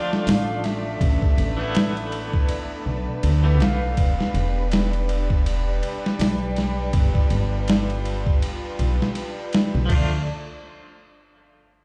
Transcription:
0.00 0.98 F3 medium
0.00 0.98 A3 medium
0.00 3.94 A3 medium
0.00 0.98 D4 medium
0.00 1.00 D4 medium
0.00 9.93 D4 medium
0.00 0.99 F4 medium
0.00 1.01 F4 medium
0.00 0.29 D5 medium
0.00 0.98 D5 medium
0.00 9.92 D5 medium
0.13 snare soft
0.27 0.98 A1 medium
0.27 0.66 F5 medium
0.27 snare loud
0.27 open hi-hat medium
0.64 2.13 E5 loud
0.64 snare soft
0.64 ride medium
1.01 1.20 A1 medium
1.01 3.95 B3 medium
1.01 9.86 B4 medium
1.01 kick loud
1.01 ride medium
1.22 kick medium
1.37 2.46 A1 medium
1.37 ride medium
1.57 2.81 E3 medium
1.57 2.82 A3 medium
1.61 2.83 B3 medium
1.61 2.84 E4 medium
1.75 snare loud
1.75 ride medium
1.97 ride soft
2.12 ride medium
2.33 kick medium
2.49 ride medium
2.86 3.05 B1 medium
3.23 3.60 D2 loud
3.23 ride medium
3.44 3.95 E3 medium
3.44 3.95 A3 medium
3.44 3.96 B3 medium
3.60 3.93 B1 medium
3.60 4.68 F5 loud
3.60 snare loud
3.60 ride medium
3.97 4.16 E1 medium
3.97 9.86 G3 medium
3.97 9.86 D4 medium
3.97 kick loud
3.97 ride medium
4.20 snare soft
4.34 5.79 E1 loud
4.34 ride medium
4.71 snare loud
4.71 ride medium
4.93 ride soft
5.09 ride medium
5.30 kick medium
5.46 ride medium
5.83 ride medium
6.06 snare soft
6.19 6.90 B1 medium
6.19 snare loud
6.19 open hi-hat medium
6.56 snare soft
6.56 ride medium
6.93 7.12 G1 medium
6.93 9.86 F4 medium
6.93 kick loud
6.93 ride medium
7.15 kick medium
7.30 8.39 G1 loud
7.30 ride medium
7.68 snare loud
7.68 ride medium
7.90 ride soft
8.05 ride medium
8.27 kick loud
8.42 ride medium
8.79 8.98 B1 medium
8.79 ride medium
9.02 snare soft
9.15 ride medium
9.53 snare loud
9.53 ride medium
9.75 9.88 B1 medium
9.85 10.16 F3 medium
9.85 10.18 A3 medium
9.90 10.24 D2 medium
9.90 10.25 A3 medium
9.90 10.24 D4 medium
9.90 10.20 D4 medium
9.90 10.24 F4 medium
9.90 10.24 D5 medium
9.90 kick loud
9.90 crash medium
9.95 10.21 F4 medium

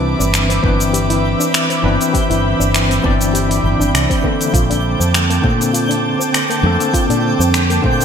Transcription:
0.00 0.14 C2 medium
0.00 0.60 E3 medium
0.00 0.60 C4 medium
0.00 8.05 C4 medium
0.00 0.61 D4 medium
0.00 0.61 B4 medium
0.00 4.50 E5 medium
0.00 8.05 G5 medium
0.00 4.50 B5 medium
0.00 4.50 D6 medium
0.00 8.05 G6 medium
0.19 0.59 G1 medium
0.19 0.27 D4 medium
0.19 shaker medium
0.34 finger snap loud
0.34 open hi-hat medium
0.34 shaker medium
0.49 0.57 C4 medium
0.49 open hi-hat soft
0.49 shaker soft
0.62 1.34 G1 medium
0.62 1.80 E3 medium
0.62 0.72 B3 medium
0.62 1.80 C4 medium
0.62 1.81 D4 medium
0.62 1.81 B4 medium
0.62 kick loud
0.80 open hi-hat soft
0.80 shaker medium
0.93 1.09 G4 medium
0.93 open hi-hat medium
0.93 shaker medium
1.10 1.22 E4 medium
1.10 open hi-hat soft
1.10 shaker soft
1.40 1.47 D4 medium
1.40 shaker medium
1.54 finger snap loud
1.54 open hi-hat medium
1.54 shaker medium
1.70 1.77 C4 medium
1.70 open hi-hat soft
1.70 shaker soft
1.82 1.96 G1 loud
1.82 3.00 E3 medium
1.82 1.92 B3 medium
1.82 3.00 C4 medium
1.82 3.01 D4 medium
1.82 3.01 B4 medium
2.01 open hi-hat soft
2.01 shaker medium
2.13 2.29 G4 medium
2.13 kick loud
2.13 open hi-hat medium
2.13 shaker medium
2.30 2.53 G1 medium
2.30 2.42 E4 medium
2.30 open hi-hat soft
2.30 shaker soft
2.60 2.99 G1 medium
2.60 2.67 D4 medium
2.60 shaker medium
2.74 finger snap loud
2.74 open hi-hat medium
2.74 shaker medium
2.89 2.97 C4 medium
2.89 open hi-hat soft
2.89 shaker soft
3.03 3.59 G1 medium
3.03 4.20 E3 medium
3.03 3.13 B3 medium
3.03 4.20 C4 medium
3.03 4.21 D4 medium
3.03 4.21 D5 medium
3.03 kick loud
3.21 open hi-hat soft
3.21 shaker medium
3.33 3.49 G4 medium
3.33 open hi-hat medium
3.33 shaker medium
3.50 3.62 E4 medium
3.50 open hi-hat soft
3.50 shaker soft
3.64 3.76 G1 medium
3.79 3.90 G1 medium
3.79 3.87 D4 medium
3.79 shaker medium
3.93 4.06 C2 medium
3.93 finger snap loud
3.93 open hi-hat medium
3.93 shaker medium
4.09 4.17 C4 medium
4.09 kick loud
4.09 open hi-hat soft
4.09 shaker soft
4.22 5.40 D3 medium
4.22 5.40 A#3 medium
4.22 4.32 B3 medium
4.22 5.41 C4 medium
4.22 5.41 A4 medium
4.22 kick medium
4.41 open hi-hat soft
4.41 shaker medium
4.53 4.94 A#1 loud
4.53 4.69 F4 medium
4.53 8.05 A5 medium
4.53 8.05 D6 medium
4.53 kick loud
4.53 open hi-hat medium
4.53 shaker medium
4.70 4.82 D4 medium
4.70 open hi-hat soft
4.70 shaker soft
5.00 5.39 F2 medium
5.00 5.07 C4 medium
5.00 shaker medium
5.14 finger snap loud
5.14 open hi-hat medium
5.14 shaker medium
5.30 5.37 A#3 medium
5.30 open hi-hat soft
5.30 shaker soft
5.42 6.14 A#2 medium
5.42 6.60 D3 medium
5.42 5.52 A3 medium
5.42 6.60 A#3 medium
5.42 6.61 C4 medium
5.42 6.61 A4 medium
5.42 kick loud
5.61 open hi-hat soft
5.61 shaker medium
5.73 5.89 F4 medium
5.73 open hi-hat medium
5.73 shaker medium
5.89 6.02 D4 medium
5.89 open hi-hat soft
5.89 shaker soft
6.19 6.27 C4 medium
6.19 shaker medium
6.34 finger snap loud
6.34 open hi-hat medium
6.34 shaker medium
6.50 6.57 A#3 medium
6.50 open hi-hat soft
6.50 shaker soft
6.63 6.76 F2 loud
6.63 7.80 D3 medium
6.63 6.72 A3 medium
6.63 7.81 A#3 medium
6.63 7.81 C4 medium
6.63 7.82 A4 loud
6.80 open hi-hat soft
6.80 shaker medium
6.94 7.09 F4 medium
6.94 kick loud
6.94 open hi-hat medium
6.94 shaker medium
7.10 7.32 A#2 medium
7.10 7.22 D4 medium
7.10 open hi-hat soft
7.10 shaker soft
7.39 7.78 F2 medium
7.39 7.47 C4 medium
7.39 shaker medium
7.54 finger snap loud
7.54 open hi-hat medium
7.54 shaker medium
7.70 7.77 A#3 medium
7.70 open hi-hat soft
7.70 shaker soft
7.82 8.05 A#2 medium
7.82 8.05 D3 medium
7.82 7.92 A3 medium
7.82 8.05 A#3 medium
7.82 8.05 C4 medium
7.82 8.05 C5 medium
7.82 kick loud
8.01 open hi-hat soft
8.01 shaker medium

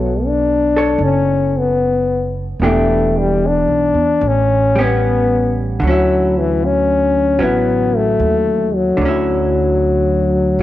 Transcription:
0.00 0.95 B1 medium
0.00 0.27 F#3 medium
0.00 2.61 B3 soft
0.00 0.75 A4 soft
0.00 0.77 C#5 soft
0.25 1.02 D4 medium
0.76 2.62 A4 soft
0.76 2.63 C#5 soft
0.98 2.56 F#1 medium
1.04 1.60 C#4 medium
1.59 2.37 B3 medium
2.60 3.63 E1 medium
2.60 4.22 E3 soft
2.60 4.22 B3 soft
2.60 4.22 G4 soft
2.64 3.21 A3 medium
2.64 4.22 D4 soft
3.19 3.48 G3 medium
3.47 4.29 D4 medium
3.68 3.92 B1 soft
3.94 4.19 E2 medium
4.21 5.77 A1 medium
4.27 4.86 C#4 medium
4.75 5.80 G3 soft
4.75 5.82 B3 soft
4.80 5.60 B3 medium
4.80 5.83 C#4 soft
5.80 7.36 D2 medium
5.80 8.96 D3 soft
5.80 7.38 F#3 soft
5.86 6.40 F#3 medium
5.86 7.39 C#4 soft
5.90 7.41 E4 medium
6.38 6.67 E3 medium
6.65 7.43 C#4 medium
7.39 8.15 A1 medium
7.39 8.99 F#3 soft
7.39 7.98 B3 medium
7.39 8.99 C#4 soft
7.39 9.00 E4 soft
7.96 8.77 A3 medium
8.20 8.95 D#2 medium
8.75 10.63 F#3 medium
8.97 10.56 D2 medium
8.97 10.63 D3 soft
9.01 10.59 F#3 soft
9.05 10.61 C#4 soft
9.05 10.61 E4 soft
10.59 10.63 A1 medium

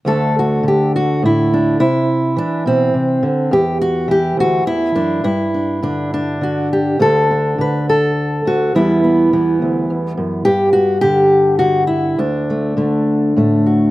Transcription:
0.05 1.79 D2 medium
0.05 0.62 D3 soft
0.05 1.77 A3 soft
0.05 1.51 D4 soft
0.05 0.36 A4 medium
0.39 0.67 F#4 medium
0.63 1.78 D3 soft
0.68 0.95 G4 medium
0.96 1.23 F#4 medium
1.23 1.79 A2 soft
1.23 1.79 E4 medium
1.54 1.81 D4 medium
1.80 2.36 C3 medium
1.80 2.94 E4 medium
2.36 3.22 E3 soft
2.36 2.66 D4 medium
2.66 2.94 B2 soft
2.66 3.52 C4 medium
2.94 3.22 C3 soft
3.23 3.51 D3 medium
3.51 4.37 E2 medium
3.51 3.81 G4 medium
3.81 4.09 F#4 medium
4.08 5.21 E3 medium
4.08 4.38 G4 medium
4.37 4.65 D2 soft
4.37 4.67 F#4 medium
4.66 4.95 E2 soft
4.66 5.23 E4 medium
4.95 5.23 F#2 soft
4.95 5.25 D4 medium
5.24 6.97 G2 medium
5.24 6.42 E4 medium
5.54 5.83 D4 soft
5.83 6.40 D3 soft
5.83 6.13 D4 medium
6.14 6.99 D4 medium
6.41 6.97 D3 soft
6.41 6.72 F#4 medium
6.73 7.01 G4 medium
6.99 8.44 D2 medium
6.99 7.57 D3 soft
6.99 7.30 D4 soft
6.99 7.60 A4 medium
7.31 8.47 D4 soft
7.58 8.74 D3 soft
7.58 7.89 B4 medium
7.89 8.75 A4 medium
8.45 8.74 D2 soft
8.45 8.76 F#4 medium
8.75 9.60 E2 medium
8.75 9.32 E3 soft
8.75 12.19 G3 soft
8.75 9.04 B3 soft
8.75 10.45 E4 medium
9.04 9.33 B3 soft
9.33 10.43 E3 medium
9.33 12.19 B3 soft
9.62 9.90 D2 medium
9.90 10.17 E2 medium
10.17 10.46 F#2 medium
10.45 12.15 G2 medium
10.45 10.72 G4 medium
10.73 11.01 F#4 medium
11.01 11.60 D3 medium
11.01 11.58 G4 medium
11.59 12.15 D3 soft
11.59 11.87 F#4 medium
11.87 12.17 E4 medium
12.18 13.91 D2 medium
12.18 13.91 D4 medium
12.50 12.76 A3 soft
12.77 13.91 D3 soft
12.77 13.36 A3 soft
13.36 13.91 A2 soft
13.36 13.91 A3 soft
13.66 13.91 F#4 soft

